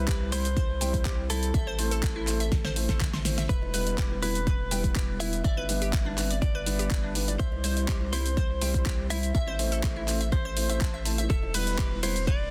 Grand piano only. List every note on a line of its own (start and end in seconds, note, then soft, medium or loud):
0.00 0.29 G3 medium
0.00 0.29 C4 medium
0.00 0.29 E4 medium
0.00 0.29 E5 loud
0.32 0.44 G3 medium
0.32 0.44 C4 medium
0.32 0.44 E4 medium
0.32 0.44 C5 loud
0.81 1.27 G3 medium
0.81 1.27 C4 medium
0.81 1.27 E4 medium
0.81 1.27 C5 loud
1.30 1.48 G3 medium
1.30 1.48 C4 medium
1.30 1.48 E4 medium
1.30 1.48 C5 medium
1.79 2.25 A3 medium
1.79 2.25 C4 medium
1.79 2.25 E4 medium
1.79 2.25 C5 loud
2.27 2.39 A3 medium
2.27 2.39 C4 medium
2.27 2.39 E4 medium
2.27 2.39 C5 loud
2.76 2.87 A3 medium
2.76 2.87 C4 medium
2.76 2.87 E4 medium
2.76 2.87 C5 medium
2.89 2.99 A3 medium
2.89 2.99 C4 medium
2.89 2.99 E4 medium
2.89 2.99 C5 loud
3.25 3.43 A3 medium
3.25 3.43 C4 medium
3.25 3.43 E4 medium
3.25 3.43 C5 medium
3.74 4.20 G3 medium
3.74 4.20 B3 medium
3.74 4.20 E4 medium
3.74 4.20 B4 loud
4.22 4.34 G3 medium
4.22 4.34 B3 medium
4.22 4.34 E4 medium
4.22 4.34 B4 loud
4.71 5.17 G3 loud
4.71 5.17 B3 medium
4.71 5.17 E4 medium
4.71 5.17 B4 loud
5.20 5.38 G3 medium
5.20 5.38 B3 medium
5.20 5.38 E4 medium
5.20 5.38 B4 medium
5.69 6.15 G3 medium
5.69 6.15 B3 medium
5.69 6.15 D4 medium
5.69 6.15 B4 loud
6.18 6.29 G3 medium
6.18 6.29 B3 medium
6.18 6.29 D4 medium
6.18 6.29 B4 loud
6.66 7.12 G3 loud
6.66 7.12 B3 medium
6.66 7.12 D4 medium
6.66 7.12 B4 loud
7.15 7.33 G3 medium
7.15 7.33 B3 medium
7.15 7.33 D4 medium
7.15 7.33 B4 medium
7.64 8.10 G3 medium
7.64 8.10 C4 medium
7.64 8.10 E4 medium
7.64 8.10 C5 loud
8.13 8.24 G3 medium
8.13 8.24 C4 medium
8.13 8.24 E4 medium
8.13 8.24 C5 loud
8.62 9.08 G3 loud
8.62 9.08 C4 medium
8.62 9.08 E4 medium
8.62 9.08 C5 loud
9.10 9.28 G3 medium
9.10 9.28 C4 medium
9.10 9.28 E4 medium
9.10 9.28 C5 medium
9.59 10.05 A3 medium
9.59 10.05 C4 medium
9.59 10.05 E4 medium
9.59 10.05 C5 loud
10.08 10.19 A3 medium
10.08 10.19 C4 medium
10.08 10.19 E4 medium
10.08 10.19 C5 medium
10.57 10.68 A3 medium
10.57 10.68 C4 medium
10.57 10.68 E4 medium
10.57 10.68 C5 medium
10.69 10.80 A3 medium
10.69 10.80 C4 medium
10.69 10.80 E4 medium
10.69 10.80 C5 loud
11.05 11.23 A3 medium
11.05 11.23 C4 medium
11.05 11.23 E4 medium
11.05 11.23 C5 medium
11.54 12.00 G3 medium
11.54 12.00 B3 medium
11.54 12.00 E4 medium
11.54 12.00 B4 loud
12.03 12.14 G3 medium
12.03 12.14 B3 medium
12.03 12.14 E4 medium
12.03 12.14 B4 loud